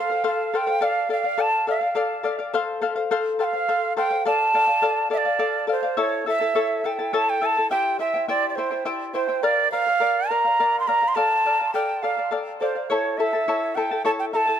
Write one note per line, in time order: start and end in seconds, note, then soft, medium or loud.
0.00 0.10 A4 medium
0.00 0.10 C5 medium
0.00 0.24 F5 medium
0.10 0.23 C5 soft
0.10 0.23 F5 soft
0.24 0.52 A4 medium
0.24 0.53 C5 medium
0.24 0.53 F5 medium
0.24 0.58 F5 medium
0.53 0.68 A4 medium
0.53 0.67 C5 medium
0.53 0.66 F5 medium
0.53 0.85 G5 medium
0.67 0.82 C5 soft
0.67 0.81 F5 medium
0.81 1.08 A4 medium
0.81 1.09 D5 medium
0.81 1.09 F5 medium
0.81 1.11 F5 medium
1.09 1.24 A4 soft
1.09 1.24 D5 medium
1.09 1.23 F5 medium
1.09 1.42 F5 medium
1.24 1.37 D5 soft
1.24 1.37 F5 medium
1.37 1.66 A4 medium
1.37 1.67 D5 medium
1.37 1.67 F5 medium
1.37 1.69 A5 medium
1.67 1.82 A4 medium
1.67 1.82 D5 medium
1.67 1.80 F5 medium
1.67 2.29 F5 medium
1.81 1.94 D5 soft
1.81 1.95 F5 soft
1.95 2.22 A4 medium
1.95 2.23 D5 medium
1.95 2.24 F5 medium
2.23 2.39 A4 medium
2.23 2.39 D5 medium
2.23 2.37 F5 medium
2.39 2.54 D5 soft
2.39 2.53 F5 medium
2.53 2.80 A4 medium
2.53 2.81 C5 medium
2.53 2.82 F5 loud
2.81 2.96 A4 medium
2.81 2.96 C5 medium
2.81 2.95 F5 medium
2.96 3.10 C5 soft
2.96 3.11 F5 medium
3.11 3.38 A4 medium
3.11 3.39 C5 loud
3.11 3.39 F5 medium
3.39 3.54 A4 medium
3.39 3.53 C5 medium
3.39 3.52 F5 medium
3.39 3.45 G5 medium
3.44 3.94 F5 medium
3.53 3.68 C5 soft
3.53 3.68 F5 soft
3.68 3.95 A4 medium
3.68 3.96 C5 medium
3.68 3.97 F5 medium
3.97 4.11 A4 medium
3.97 4.11 C5 medium
3.97 4.09 F5 medium
3.97 4.24 G5 medium
4.11 4.26 C5 soft
4.11 4.25 F5 medium
4.25 4.52 A4 medium
4.25 4.53 D5 medium
4.25 4.54 F5 medium
4.25 5.08 A5 loud
4.54 4.69 A4 medium
4.54 4.68 D5 medium
4.54 4.66 F5 medium
4.67 4.81 D5 soft
4.67 4.81 F5 soft
4.82 5.09 A4 medium
4.82 5.10 D5 medium
4.82 5.10 F5 medium
5.10 5.25 A4 medium
5.10 5.25 D5 medium
5.10 5.19 E5 medium
5.10 5.24 F5 medium
5.18 5.66 D5 medium
5.25 5.38 D5 soft
5.25 5.38 F5 soft
5.39 5.66 A4 medium
5.39 5.67 D5 medium
5.39 5.68 F5 medium
5.67 5.83 A4 medium
5.67 5.83 D5 medium
5.67 5.81 F5 medium
5.72 5.97 C5 medium
5.83 5.97 D5 soft
5.83 5.96 F5 medium
5.97 6.25 E4 medium
5.97 6.26 A4 medium
5.97 6.26 C#5 medium
5.97 6.25 E5 medium
5.97 6.26 A5 medium
6.01 6.26 C#5 medium
6.26 6.40 E4 soft
6.26 6.40 A4 medium
6.26 6.41 E5 soft
6.26 6.87 E5 medium
6.26 6.39 A5 medium
6.40 6.54 E4 soft
6.40 6.54 A4 soft
6.40 6.55 A5 soft
6.55 6.84 E4 medium
6.55 6.84 A4 medium
6.55 6.84 C#5 medium
6.55 6.83 E5 medium
6.55 6.85 A5 medium
6.84 6.99 E4 medium
6.84 6.98 A4 medium
6.84 6.99 E5 medium
6.84 7.16 G5 medium
6.84 6.98 A5 medium
6.99 7.12 E4 soft
6.99 7.12 A4 soft
6.99 7.13 A5 soft
7.13 7.40 E4 medium
7.13 7.41 A4 medium
7.13 7.42 C#5 medium
7.13 7.40 E5 medium
7.13 7.42 A5 medium
7.13 7.31 A5 medium
7.30 7.47 G5 medium
7.41 7.56 E4 medium
7.41 7.56 A4 medium
7.41 7.56 E5 medium
7.41 7.56 A5 medium
7.41 7.70 A5 medium
7.57 7.70 E4 soft
7.57 7.71 A4 soft
7.57 7.70 A5 medium
7.70 7.98 E4 medium
7.70 8.00 G4 medium
7.70 7.99 C5 medium
7.70 7.98 E5 medium
7.70 7.97 G5 medium
7.70 7.99 G5 medium
7.99 8.14 E4 medium
7.99 8.13 C5 medium
7.99 8.14 E5 medium
7.99 8.26 E5 medium
7.99 8.13 G5 medium
8.14 8.28 E4 soft
8.14 8.28 C5 soft
8.14 8.28 G5 medium
8.28 8.57 E4 medium
8.28 8.57 G4 medium
8.28 8.57 C5 medium
8.28 8.49 D5 medium
8.28 8.56 E5 medium
8.28 8.57 G5 medium
8.49 8.57 D5 soft
8.55 8.71 E4 medium
8.55 8.88 C5 medium
8.55 8.70 C5 medium
8.55 8.71 E5 medium
8.55 8.69 G5 medium
8.71 8.85 E4 soft
8.71 8.85 C5 soft
8.71 8.85 G5 soft
8.85 9.14 E4 medium
8.85 9.14 G4 medium
8.85 9.14 C5 medium
8.85 9.13 E5 medium
8.85 9.14 G5 medium
9.14 9.28 E4 medium
9.14 9.45 C5 medium
9.14 9.28 C5 medium
9.14 9.29 E5 medium
9.14 9.27 G5 medium
9.28 9.42 E4 soft
9.28 9.43 C5 soft
9.28 9.43 G5 soft
9.43 9.71 A#4 medium
9.43 9.72 D5 medium
9.43 9.71 D5 medium
9.43 9.72 F5 medium
9.72 9.86 A#4 medium
9.72 9.87 D5 medium
9.72 10.31 F5 medium
9.72 9.85 F5 medium
9.87 10.00 D5 soft
9.87 10.00 F5 soft
10.00 10.29 A#4 medium
10.00 10.29 D5 medium
10.00 10.30 F5 medium
10.29 10.44 A#4 medium
10.29 10.45 D5 medium
10.29 10.44 F5 medium
10.29 10.79 A#5 medium
10.45 10.59 D5 soft
10.45 10.59 F5 soft
10.59 10.86 A#4 medium
10.59 10.87 D5 medium
10.59 10.88 F5 medium
10.80 10.89 C6 medium
10.87 11.02 A#4 medium
10.87 11.02 D5 medium
10.87 11.01 F5 medium
10.87 11.10 A#5 medium
11.02 11.15 D5 soft
11.02 11.16 F5 soft
11.08 11.17 C6 medium
11.15 11.44 A4 medium
11.15 11.45 D5 medium
11.15 11.45 F5 medium
11.15 11.73 A5 medium
11.45 11.59 A4 soft
11.45 11.60 D5 medium
11.45 11.58 F5 medium
11.59 11.74 D5 soft
11.59 11.74 F5 soft
11.74 12.02 A4 medium
11.74 12.02 D5 medium
11.74 12.03 F5 medium
11.74 12.04 G5 medium
12.03 12.17 A4 medium
12.03 12.17 D5 medium
12.03 12.31 F5 medium
12.03 12.16 F5 medium
12.17 12.31 D5 soft
12.17 12.31 F5 soft
12.31 12.59 A4 medium
12.31 12.60 D5 medium
12.31 12.61 F5 medium
12.61 12.75 A4 medium
12.61 12.91 C5 medium
12.61 12.75 D5 medium
12.61 12.74 F5 medium
12.75 12.89 D5 soft
12.75 12.89 F5 soft
12.90 13.18 E4 medium
12.90 13.18 A4 medium
12.90 13.19 C#5 medium
12.90 13.18 C#5 medium
12.90 13.17 E5 medium
12.90 13.19 A5 medium
13.18 13.33 E4 medium
13.18 13.33 A4 medium
13.18 13.77 E5 medium
13.18 13.33 E5 soft
13.18 13.32 A5 medium
13.33 13.47 E4 soft
13.33 13.47 A4 soft
13.33 13.47 A5 soft
13.48 13.76 E4 medium
13.48 13.76 A4 medium
13.48 13.76 C#5 medium
13.48 13.75 E5 medium
13.48 13.76 A5 medium
13.75 13.91 E4 medium
13.75 13.91 A4 medium
13.75 13.90 E5 medium
13.75 14.04 G5 medium
13.75 13.90 A5 medium
13.91 14.04 E4 soft
13.91 14.04 A4 soft
13.91 14.04 A5 soft
14.05 14.33 E4 medium
14.05 14.33 A4 medium
14.05 14.33 C#5 medium
14.05 14.32 E5 medium
14.05 14.11 A5 medium
14.05 14.34 A5 medium
14.19 14.25 G5 medium
14.33 14.47 E4 medium
14.33 14.47 A4 medium
14.33 14.47 E5 medium
14.33 14.46 A5 medium
14.33 14.60 A5 medium
14.33 14.38 A#5 medium
14.47 14.60 E4 soft
14.47 14.60 A4 soft
14.47 14.60 A5 medium